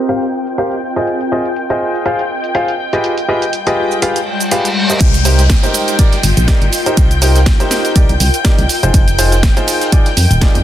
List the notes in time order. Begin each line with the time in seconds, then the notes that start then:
Already playing: C4 F4 A#4 D#5 G5 G6
0.09 G4 A#4 C5 F5, closed hi-hat, shaker
0.23 closed hi-hat, shaker
0.47 closed hi-hat, shaker
0.58 G4 A#4 C5 F5, closed hi-hat, shaker
0.72 closed hi-hat, shaker
0.96 F4 G#4 C5 D#5, closed hi-hat, shaker
1.07 closed hi-hat, shaker
1.21 closed hi-hat, shaker
1.32 F4 G#4 C5 D#5
1.45 closed hi-hat, shaker
1.56 closed hi-hat, shaker
1.70 F4 G#4 C5 D#5, closed hi-hat, shaker
1.95 shaker
2.06 F4 G#4 C5 F5, closed hi-hat, shaker
2.19 closed hi-hat, shaker
2.44 closed hi-hat, shaker
2.55 F4 G#4 C5 F5, closed hi-hat, shaker
2.68 closed hi-hat, shaker
2.93 F4 G4 G#4 B4 D#5, closed hi-hat, shaker
3.04 G3, closed hi-hat, shaker
3.18 closed hi-hat, shaker
3.28 F4 G4 G#4 B4 D#5
3.42 closed hi-hat, shaker
3.53 closed hi-hat, shaker
3.57 G#3
3.67 F4 G4 G#4 B4 D#5, closed hi-hat, shaker
3.92 B4 F5, shaker
4.02 F4 G4 G#4 B4 F5, closed hi-hat, reverse cymbal, shaker
4.16 closed hi-hat, shaker
4.41 closed hi-hat, shaker
4.51 F4 G4 G#4 B4 F5, closed hi-hat, shaker
4.65 closed hi-hat, shaker
4.90 G4 A#4 C5 D#5, closed hi-hat, shaker
5.01 C2 F4 G5 G6, kick, closed hi-hat, ride, downlifter, shaker
5.14 closed hi-hat, ride, shaker
5.25 D#4 G4 A#4 C5, open hi-hat, ride, shaker
5.39 snare, closed hi-hat, shaker
5.44 A#4
5.50 kick, snare, closed hi-hat, ride, shaker
5.63 D#4 G4 A#4 C5, closed hi-hat, shaker
5.74 open hi-hat, ride, shaker
5.88 snare, closed hi-hat, shaker
5.99 D#4 G4 A#4 D5, kick, closed hi-hat, ride, shaker
6.13 snare, closed hi-hat
6.20 G1 G5, open hi-hat, ride, shaker
6.37 A#1, closed hi-hat, shaker
6.48 D#4 G4 A#4 D5, kick, snare, closed hi-hat, ride, shaker
6.62 G1, closed hi-hat
6.73 open hi-hat, ride, shaker
6.86 D#4 G4 A#4 C5, closed hi-hat, shaker
6.97 C2, kick, closed hi-hat, ride, shaker
7.11 closed hi-hat, shaker
7.22 D#4 G4 A#4 C5, open hi-hat, ride, shaker
7.36 snare, closed hi-hat, shaker
7.46 kick, snare, closed hi-hat, ride, shaker
7.60 D#4 G4 A#4 C5, snare, closed hi-hat, shaker
7.71 snare, open hi-hat, ride, shaker
7.85 snare, closed hi-hat, shaker
7.96 C2 D#4 G4 A#4 D5, kick, closed hi-hat, ride, shaker
8.09 C2, closed hi-hat
8.20 C2, open hi-hat, ride, shaker
8.34 closed hi-hat, shaker
8.45 D#4 G4 A#4 D5, kick, snare, closed hi-hat, ride, shaker
8.58 C2, closed hi-hat
8.69 open hi-hat, ride, shaker
8.83 F1 D#4 F4 G#4 C5, closed hi-hat, shaker
8.94 F1, kick, closed hi-hat, ride, shaker
9.08 closed hi-hat, ride, shaker
9.19 D#4 F4 G#4 C5, open hi-hat, ride, shaker
9.32 snare, closed hi-hat, shaker
9.43 kick, snare, closed hi-hat, ride, shaker
9.57 D#4 F4 G#4 C5, closed hi-hat, shaker
9.68 open hi-hat, ride, shaker
9.81 snare, closed hi-hat, shaker
9.92 D#4 F4 G#4 D5, kick, closed hi-hat, ride, shaker
10.06 snare, closed hi-hat
10.17 F2, open hi-hat, ride, shaker
10.31 D#1, closed hi-hat, shaker
10.41 D#4 F4 G#4 D5, kick, snare, closed hi-hat, ride, shaker
10.55 F2, closed hi-hat